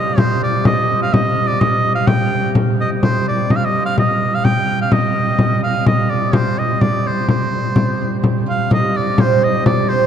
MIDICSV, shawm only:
0, 0, Header, 1, 2, 480
1, 0, Start_track
1, 0, Key_signature, -3, "minor"
1, 0, Tempo, 473560
1, 176, Time_signature, 3, 2, 24, 8
1, 10203, End_track
2, 0, Start_track
2, 0, Title_t, "Shawm"
2, 0, Program_c, 0, 111
2, 0, Note_on_c, 0, 75, 78
2, 187, Note_on_c, 0, 72, 78
2, 202, Note_off_c, 0, 75, 0
2, 423, Note_off_c, 0, 72, 0
2, 439, Note_on_c, 0, 74, 77
2, 653, Note_off_c, 0, 74, 0
2, 671, Note_on_c, 0, 75, 85
2, 1001, Note_off_c, 0, 75, 0
2, 1037, Note_on_c, 0, 77, 77
2, 1149, Note_on_c, 0, 75, 81
2, 1165, Note_off_c, 0, 77, 0
2, 1496, Note_on_c, 0, 74, 81
2, 1511, Note_off_c, 0, 75, 0
2, 1624, Note_on_c, 0, 75, 84
2, 1639, Note_off_c, 0, 74, 0
2, 1971, Note_off_c, 0, 75, 0
2, 1977, Note_on_c, 0, 77, 77
2, 2100, Note_on_c, 0, 79, 81
2, 2115, Note_off_c, 0, 77, 0
2, 2550, Note_off_c, 0, 79, 0
2, 2844, Note_on_c, 0, 75, 74
2, 2948, Note_off_c, 0, 75, 0
2, 3075, Note_on_c, 0, 72, 78
2, 3293, Note_off_c, 0, 72, 0
2, 3328, Note_on_c, 0, 74, 73
2, 3560, Note_on_c, 0, 75, 74
2, 3575, Note_off_c, 0, 74, 0
2, 3611, Note_on_c, 0, 77, 66
2, 3627, Note_off_c, 0, 75, 0
2, 3699, Note_on_c, 0, 75, 85
2, 3715, Note_off_c, 0, 77, 0
2, 3908, Note_off_c, 0, 75, 0
2, 3914, Note_on_c, 0, 77, 77
2, 4022, Note_off_c, 0, 77, 0
2, 4040, Note_on_c, 0, 75, 79
2, 4408, Note_on_c, 0, 77, 79
2, 4423, Note_off_c, 0, 75, 0
2, 4504, Note_on_c, 0, 79, 90
2, 4520, Note_off_c, 0, 77, 0
2, 4865, Note_off_c, 0, 79, 0
2, 4880, Note_on_c, 0, 77, 79
2, 4992, Note_on_c, 0, 75, 87
2, 5007, Note_off_c, 0, 77, 0
2, 5705, Note_off_c, 0, 75, 0
2, 5712, Note_on_c, 0, 77, 79
2, 5932, Note_off_c, 0, 77, 0
2, 5950, Note_on_c, 0, 75, 85
2, 6183, Note_on_c, 0, 74, 78
2, 6198, Note_off_c, 0, 75, 0
2, 6428, Note_on_c, 0, 72, 77
2, 6443, Note_off_c, 0, 74, 0
2, 6676, Note_on_c, 0, 75, 79
2, 6691, Note_off_c, 0, 72, 0
2, 6909, Note_on_c, 0, 74, 76
2, 6924, Note_off_c, 0, 75, 0
2, 7165, Note_on_c, 0, 72, 71
2, 7180, Note_off_c, 0, 74, 0
2, 7388, Note_off_c, 0, 72, 0
2, 7395, Note_on_c, 0, 72, 71
2, 8306, Note_off_c, 0, 72, 0
2, 8609, Note_on_c, 0, 77, 71
2, 8818, Note_off_c, 0, 77, 0
2, 8855, Note_on_c, 0, 75, 79
2, 9089, Note_on_c, 0, 74, 70
2, 9104, Note_off_c, 0, 75, 0
2, 9325, Note_on_c, 0, 72, 74
2, 9340, Note_off_c, 0, 74, 0
2, 9567, Note_on_c, 0, 75, 79
2, 9582, Note_off_c, 0, 72, 0
2, 9791, Note_off_c, 0, 75, 0
2, 9797, Note_on_c, 0, 74, 72
2, 10022, Note_on_c, 0, 72, 73
2, 10037, Note_off_c, 0, 74, 0
2, 10203, Note_off_c, 0, 72, 0
2, 10203, End_track
0, 0, End_of_file